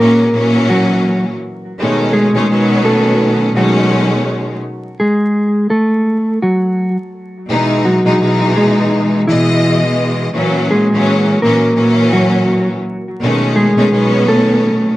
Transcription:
0.00 string section A#2 E3 F#3 C#4, clean electric guitar A#3 A#4
0.32 string section A#2 E3 F#3 C#4
0.70 clean electric guitar F#3 F#4
1.79 string section B2 D#3 G#3 A3 C#4
2.13 clean electric guitar G#3 G#4
2.33 string section B2 D#3 G#3 A3 C#4
2.49 string section B2 D#3 F#3 B3 C#4
2.85 clean electric guitar A3 A4
3.54 string section B2 D#3 G#3 A3 C#4, clean electric guitar F#3 F#4
5.00 clean electric guitar G#3 G#4
5.70 clean electric guitar A3 A4
6.43 clean electric guitar F#3 F#4
7.49 string section B2 E3 G#3 D#4
7.85 clean electric guitar F#3 F#4
8.04 string section B2 E3 G#3 D#4
8.20 string section B2 E3 G#3 D#4
8.56 clean electric guitar G#3 G#4
9.27 string section B2 E3 G#3 D#5, clean electric guitar E3 E4
10.33 string section A#2 E3 F#3 C#4
10.71 clean electric guitar G#3 G#4
10.91 string section A#2 E3 F#3 C#4
11.42 string section A#2 E3 F#3 C#4, clean electric guitar A#3 A#4
11.75 string section A#2 E3 F#3 C#4
12.13 clean electric guitar F#3 F#4
13.21 string section B2 D#3 G#3 A3 C#4
13.56 clean electric guitar G#3 G#4
13.75 string section B2 D#3 G#3 A3 C#4
13.91 string section B2 D#3 F#3 B3 C#4
14.28 clean electric guitar A3 A4

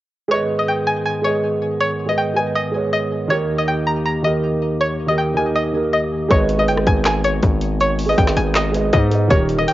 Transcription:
0.28 pipe organ G#2 D#3 B3 G#4, grand piano G#3 G#4 B4, synth pluck C#5
0.33 grand piano D#5
0.59 synth pluck D#5
0.68 synth pluck G5
0.87 synth pluck G#5
1.05 synth pluck G#5
1.22 grand piano G#3 G#4 B4, synth pluck C#5
1.26 grand piano D#5
1.81 synth pluck C#5
2.06 grand piano G#3 G#4 B4, synth pluck D#5
2.11 grand piano D#5
2.18 synth pluck G5
2.34 grand piano G#3 G#4 B4, synth pluck G#5
2.39 grand piano D#5
2.56 synth pluck D#5
2.72 grand piano G#3 G#4 B4
2.76 grand piano C#5
2.93 synth pluck D#5
3.28 pipe organ D#2 A#3 G4, grand piano D#3 D#4 G4, synth pluck C#5
3.33 grand piano A#4
3.59 synth pluck D#5
3.68 synth pluck G5
3.87 synth pluck A#5
4.06 synth pluck A#5
4.22 grand piano D#3 D#4 G4, synth pluck D#5
4.27 grand piano A#4
4.81 synth pluck C#5
5.06 grand piano D#3 D#4 G4, synth pluck D#5
5.11 grand piano A#4
5.18 synth pluck G5
5.34 grand piano D#3 D#4 G4, synth pluck G#5
5.38 grand piano A#4
5.55 synth pluck D#5
5.72 grand piano D#3 D#4 G4
5.77 grand piano A#4
5.93 synth pluck D#5
6.28 808-style bass G#1, grand piano G#3 G#4 B4, pipe organ G#3 B3 D#4, synth pluck C#5, kick, closed hi-hat
6.33 grand piano D#5
6.49 closed hi-hat
6.57 grand piano G#3 G#4 B4, synth pluck D#5
6.61 grand piano D#5
6.68 808-style bass G1, synth pluck G5, closed hi-hat
6.77 808-style bass G#1, cross-stick
6.87 808-style bass G#1, synth pluck G#5, kick, closed hi-hat
7.05 synth pluck G#5, cross-stick, snare, clap, closed hi-hat
7.24 synth pluck C#5, closed hi-hat
7.43 808-style bass G#1, kick, closed hi-hat
7.61 closed hi-hat
7.81 synth pluck C#5, closed hi-hat
7.99 open hi-hat
8.06 grand piano G#3 G#4 B4, synth pluck D#5
8.11 grand piano D#5
8.18 808-style bass G#1, synth pluck G5, kick, closed hi-hat
8.27 cross-stick, snare
8.37 808-style bass G#1, synth pluck G#5, closed hi-hat
8.55 synth pluck D#5, cross-stick, snare, clap, closed hi-hat
8.72 grand piano G#3 G#4 B4, closed hi-hat
8.76 grand piano D#5
8.93 808-style bass G#2, synth pluck D#5, kick, closed hi-hat
9.10 grand piano G#3 G#4 B4, closed hi-hat
9.15 grand piano D#5
9.28 808-style bass D#1, grand piano D#3 D#4 G4, pipe organ D#3 G4 A#4, synth pluck C#5, kick, closed hi-hat
9.32 grand piano A#4
9.49 closed hi-hat
9.56 grand piano D#3 D#4 G4, synth pluck D#5
9.61 grand piano A#4
9.68 synth pluck G5, closed hi-hat

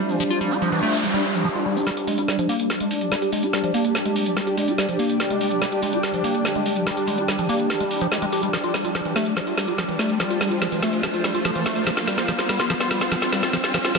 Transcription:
Already playing: acid bass G3, synth texture G3 D4, ambient pad F4 C5 F5
0.09 acid bass E3, shaker
0.20 acid bass F3, noise sweep, shaker
0.30 acid bass F4, shaker
0.41 acid bass G3
0.51 acid bass F4, shaker
0.62 acid bass F3, shaker
0.72 acid bass E3, shaker
0.82 acid bass A3
0.93 shaker
1.03 acid bass G3, shaker
1.14 acid bass G3, shaker
1.34 acid bass E3, shaker
1.45 acid bass F3, shaker
1.55 acid bass F4, shaker
1.66 acid bass G3
1.76 acid bass F4, shaker
1.87 acid bass G3, synth texture G3 D4, ambient pad G4, snare, closed hi-hat, riser
1.97 acid bass G4, closed hi-hat
2.07 acid bass G#3, open hi-hat
2.18 acid bass G4, ambient pad D5, closed hi-hat
2.28 acid bass G3, snare, closed hi-hat
2.39 acid bass F3, closed hi-hat
2.49 acid bass A#3, open hi-hat
2.60 closed hi-hat
2.70 acid bass G#3, snare, closed hi-hat
2.80 acid bass G#3, closed hi-hat
2.91 open hi-hat
3.01 acid bass F3, ambient pad G5, closed hi-hat
3.12 acid bass G3, snare, closed hi-hat
3.22 acid bass G4, closed hi-hat
3.33 acid bass G#3, open hi-hat
3.43 acid bass G4, closed hi-hat
3.53 acid bass G3, snare, closed hi-hat
3.64 acid bass F3, closed hi-hat
3.74 acid bass A#3, open hi-hat
3.85 closed hi-hat
3.95 acid bass G#3, snare, closed hi-hat
4.05 acid bass G#3, closed hi-hat
4.16 open hi-hat
4.26 acid bass F3, closed hi-hat
4.37 acid bass G3, snare, closed hi-hat
4.47 acid bass G4, closed hi-hat
4.57 acid bass G#3, open hi-hat
4.68 acid bass G4, closed hi-hat
4.78 acid bass G3, snare, closed hi-hat
4.89 acid bass F3, closed hi-hat
4.99 acid bass A#3, open hi-hat
5.10 closed hi-hat
5.20 acid bass G#3, snare, closed hi-hat
5.30 acid bass G#3, closed hi-hat
5.41 open hi-hat
5.51 acid bass F3, closed hi-hat
5.62 acid bass G3, snare, closed hi-hat
5.72 acid bass G4, closed hi-hat
5.82 acid bass G#3, open hi-hat
5.93 acid bass G4, closed hi-hat
6.03 acid bass G3, snare, closed hi-hat
6.14 acid bass F3, closed hi-hat
6.24 acid bass A#3, open hi-hat
6.35 closed hi-hat
6.45 acid bass G#3, snare, closed hi-hat
6.55 acid bass G#3, closed hi-hat
6.66 open hi-hat
6.76 acid bass F3, closed hi-hat
6.87 acid bass G3, snare, closed hi-hat
6.97 acid bass G4, closed hi-hat
7.08 acid bass G#3, open hi-hat
7.18 acid bass G4, closed hi-hat
7.28 acid bass G3, snare, closed hi-hat
7.39 acid bass F3, closed hi-hat
7.49 acid bass A#3, open hi-hat
7.60 closed hi-hat
7.70 acid bass G#3, snare, closed hi-hat
7.80 acid bass G#3, closed hi-hat
7.91 open hi-hat
8.01 acid bass F3, closed hi-hat
8.12 acid bass G#3, snare, closed hi-hat
8.22 acid bass G#3, closed hi-hat
8.32 acid bass G4, open hi-hat
8.43 acid bass G3, closed hi-hat
8.53 acid bass F3, ambient pad F4, snare, closed hi-hat
8.64 acid bass F4, closed hi-hat
8.74 acid bass G3, snare, open hi-hat
8.85 acid bass F4, ambient pad C5, closed hi-hat
8.95 acid bass F3, snare, closed hi-hat
9.05 acid bass E3, closed hi-hat
9.16 acid bass A3, snare, open hi-hat
9.26 closed hi-hat
9.37 acid bass F3, snare, closed hi-hat
9.47 acid bass F4, closed hi-hat
9.57 acid bass G3, snare, open hi-hat
9.68 acid bass F4, closed hi-hat
9.78 acid bass F3, ambient pad F5, snare, closed hi-hat
9.89 acid bass E3, closed hi-hat
9.99 acid bass A3, snare, open hi-hat
10.10 closed hi-hat
10.20 acid bass F3, snare, closed hi-hat
10.30 acid bass F4, closed hi-hat
10.41 acid bass G3, snare, open hi-hat
10.51 acid bass F4, closed hi-hat
10.62 acid bass F3, snare, closed hi-hat
10.72 acid bass E3, closed hi-hat
10.82 acid bass A3, snare, open hi-hat
10.93 closed hi-hat
11.03 acid bass F3, snare, closed hi-hat
11.14 acid bass F4, closed hi-hat
11.24 acid bass G3, snare, open hi-hat
11.35 acid bass F4, closed hi-hat
11.45 acid bass F3, snare, closed hi-hat
11.55 acid bass E3, closed hi-hat
11.66 acid bass A3, snare, open hi-hat
11.76 closed hi-hat
11.87 acid bass F3, snare, closed hi-hat
11.97 acid bass F4, snare, closed hi-hat
12.07 acid bass G3, snare, open hi-hat
12.18 acid bass F4, snare, closed hi-hat
12.28 acid bass F3, snare, closed hi-hat
12.39 acid bass F4, snare, closed hi-hat
12.49 acid bass G3, snare, open hi-hat
12.60 acid bass F4, snare, closed hi-hat
12.70 acid bass F3, snare, closed hi-hat
12.80 acid bass F4, snare, closed hi-hat
12.91 acid bass G3, snare, open hi-hat
13.01 acid bass F4, snare, closed hi-hat
13.12 acid bass F3, snare, closed hi-hat
13.22 acid bass F4, snare, closed hi-hat
13.32 acid bass G3, snare, open hi-hat
13.43 acid bass F4, snare
13.53 acid bass F3, snare, closed hi-hat
13.64 acid bass F4, snare, closed hi-hat
13.74 acid bass F3, snare, open hi-hat
13.85 acid bass F4, snare, closed hi-hat
13.95 acid bass F3, snare, closed hi-hat

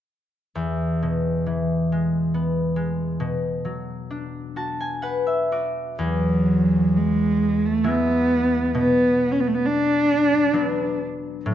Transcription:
0.55 harp E2
1.03 harp B2
1.46 harp E3
1.92 harp G#3
2.34 harp B3
2.76 harp G#3
3.20 harp B2
3.65 harp F#3
4.11 harp D4
4.56 harp F#4 A5
4.80 harp G#5
5.02 harp B4 F#5
5.27 harp E5
5.52 harp F#4 D5
5.99 harp E2, cello F#3
6.97 cello G#3
7.66 cello A3
7.84 harp F#3 G#3 E4
7.88 cello B3
8.75 harp B2, cello B3
9.31 cello C#4
9.40 cello B3
9.48 cello A3
9.55 cello B3
9.67 cello D4
10.53 harp F#3 B3 D4
11.45 harp A2, cello F#3

